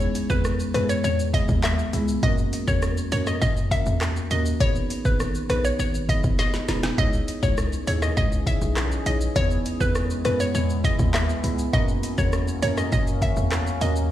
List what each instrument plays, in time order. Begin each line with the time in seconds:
0.00 shaker
0.15 closed hi-hat, shaker
0.30 808-style bass E2, marimba G#3 B3 E4 G#4, synth pluck B4, kick, shaker
0.45 cross-stick, shaker
0.60 shaker
0.74 808-style bass F#2, marimba G#3 B3 E4 G#4, synth pluck B4, cross-stick, closed hi-hat, shaker
0.89 synth pluck C#5, shaker
1.04 808-style bass E2, synth pluck C#5, shaker
1.19 shaker
1.33 marimba G#3 B3 E4 G#4, synth pluck D#5, kick, closed hi-hat, shaker
1.49 808-style bass D#2, kick, shaker
1.64 synth pluck E5, cross-stick, clap, shaker
1.79 shaker
1.93 808-style bass C#2, marimba G#3 B3 E4 G#4, closed hi-hat, shaker
2.08 shaker
2.23 808-style bass F#2, marimba A#3 C#4 F#4 A#4, synth pluck D#5, kick, shaker
2.38 shaker
2.53 closed hi-hat, shaker
2.67 808-style bass E2, marimba A#3 C#4 F#4 A#4, synth pluck C#5, kick, shaker
2.82 cross-stick, shaker
2.97 shaker
3.12 808-style bass F#2, marimba A#3 C#4 F#4 A#4, synth pluck C#5, closed hi-hat, shaker
3.27 synth pluck D#5, cross-stick, shaker
3.42 808-style bass F#2, synth pluck D#5, kick, shaker
3.57 shaker
3.71 marimba A#3 C#4 F#4 A#4, synth pluck E5, kick, closed hi-hat, shaker
3.86 808-style bass E2, shaker
4.01 cross-stick, clap, shaker
4.16 shaker
4.31 808-style bass D#2, marimba A#3 C#4 F#4 A#4, synth pluck D#5, closed hi-hat, shaker
4.46 shaker
4.60 808-style bass G#1, marimba B3 D#4 G#4 B4, synth pluck C#5, kick, shaker
4.75 shaker
4.90 closed hi-hat, shaker
5.05 808-style bass G#1, marimba B3 D#4 G#4 B4, synth pluck B4, kick, shaker
5.20 cross-stick, shaker
5.35 shaker
5.49 808-style bass A#1, marimba B3 D#4 G#4 B4, synth pluck B4, cross-stick, closed hi-hat, shaker
5.65 synth pluck C#5, shaker
5.79 808-style bass G#1, synth pluck C#5, shaker
5.95 shaker
6.09 marimba B3 D#4 G#4 B4, synth pluck D#5, kick, closed hi-hat, shaker
6.24 808-style bass F#1, kick, shaker
6.39 synth pluck D#5, snare, shaker
6.54 snare, shaker
6.68 808-style bass E1, marimba B3 D#4 G#4 B4, snare, closed hi-hat, shaker
6.83 snare, shaker
6.98 808-style bass C#2, ambient pad C#3 E3 C#4 G#4 D#5, marimba D#4 E4 G#4 C#5, synth pluck D#5, kick, shaker
7.13 shaker
7.28 closed hi-hat, shaker
7.43 808-style bass C#2, marimba D#4 E4 G#4 C#5, synth pluck C#5, kick, shaker
7.57 cross-stick, shaker
7.73 shaker
7.87 808-style bass D#2, marimba D#4 E4 G#4 C#5, synth pluck C#5, closed hi-hat, shaker
8.02 synth pluck D#5, cross-stick, shaker
8.17 808-style bass C#2, synth pluck D#5, kick, shaker
8.32 shaker
8.47 marimba D#4 E4 G#4 C#5, synth pluck E5, kick, closed hi-hat, shaker
8.61 808-style bass B1, shaker
8.77 cross-stick, clap, shaker
8.92 shaker
9.06 808-style bass A#1, marimba D#4 E4 G#4 C#5, synth pluck D#5, closed hi-hat, shaker
9.21 shaker
9.35 808-style bass E2, ambient pad G#3 B3 E4, marimba B3 E4 G#4 B4, synth pluck C#5, kick, shaker
9.51 shaker
9.66 closed hi-hat, shaker
9.80 808-style bass E2, marimba B3 E4 G#4 B4, synth pluck B4, kick, shaker
9.95 cross-stick, shaker
10.10 shaker
10.25 808-style bass F#2, marimba B3 E4 G#4 B4, synth pluck B4, cross-stick, closed hi-hat, shaker
10.40 synth pluck C#5, shaker
10.55 808-style bass E2, synth pluck C#5, shaker
10.70 shaker
10.84 marimba B3 E4 G#4 B4, synth pluck D#5, kick, closed hi-hat, shaker
10.99 808-style bass D#2, kick, shaker
11.14 synth pluck E5, cross-stick, clap, shaker
11.29 shaker
11.43 808-style bass C#2, marimba B3 E4 G#4 B4, closed hi-hat, shaker
11.59 shaker
11.73 808-style bass F#2, ambient pad F#3 A#3 C#4, marimba A#3 C#4 F#4 A#4, synth pluck D#5, kick, shaker
11.88 shaker
12.03 closed hi-hat, shaker
12.18 808-style bass E2, marimba A#3 C#4 F#4 A#4, synth pluck C#5, kick, shaker
12.33 cross-stick, shaker
12.48 shaker
12.62 808-style bass F#2, marimba A#3 C#4 F#4 A#4, synth pluck C#5, closed hi-hat, shaker
12.77 synth pluck D#5, cross-stick, shaker
12.92 808-style bass F#2, synth pluck D#5, kick, shaker
13.07 shaker
13.22 marimba A#3 C#4 F#4 A#4, synth pluck E5, kick, closed hi-hat, shaker
13.37 808-style bass E2, shaker
13.52 cross-stick, clap, shaker
13.67 shaker
13.81 808-style bass D#2, marimba A#3 C#4 F#4 A#4, synth pluck D#5, closed hi-hat, shaker
13.96 shaker